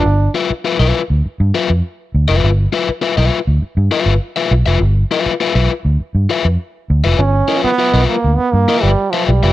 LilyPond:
<<
  \new Staff \with { instrumentName = "Overdriven electric guitar" } { \time 4/4 \key g \mixolydian \tempo 4 = 101 r8 <f' b' e''>16 r16 <f' b' e''>16 <f' b' e''>16 r4 <f' b' e''>16 r4 <f' b' e''>16 | r8 <f' b' e''>16 r16 <f' b' e''>16 <f' b' e''>16 r4 <f' b' e''>16 r8 <f' b' e''>16 r16 <f' b' e''>16 | r8 <f' b' e''>16 r16 <f' b' e''>16 <f' b' e''>16 r4 <f' b' e''>16 r4 <f' b' e''>16 | r8 <f' b' e''>16 r16 <f' b' e''>16 <f' b' e''>16 r4 <f' b' e''>16 r8 <f' b' e''>16 r16 <f' b' e''>16 | }
  \new Staff \with { instrumentName = "Trombone" } { \time 4/4 \key g \mixolydian d'8 r2. r8 | r1 | r1 | cis'8. b8. bes8 b16 bes8 g8 f16 g8 | }
  \new Staff \with { instrumentName = "Fingered electric bass" } { \clef bass \time 4/4 \key g \mixolydian g,,8 r8. b,,16 r16 d,16 r16 g,16 r16 f,16 r8 d,16 f,,16 | g,,8 r8. b,,16 r16 d,16 r16 g,16 r16 g,,16 r8 b,,16 f,,16 | g,,8 r8. b,,16 r16 d,16 r16 g,16 r16 f,16 r8 d,16 f,,16 | g,,8 r8. b,,16 r16 d,16 r16 g,16 r16 g,,16 r8 b,,16 f,,16 | }
>>